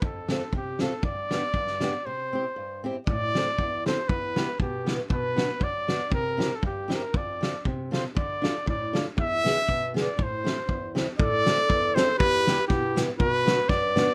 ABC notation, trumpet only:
X:1
M:2/4
L:1/16
Q:"Swing" 1/4=119
K:C
V:1 name="Trumpet"
A4 G2 A2 | d8 | c6 z2 | [K:Am] d6 c2 |
B4 G3 z | B4 d4 | _B3 A G2 B2 | d4 z2 c2 |
d4 d3 z | e6 d2 | c6 z2 | d6 c2 |
B4 G3 z | B4 d4 |]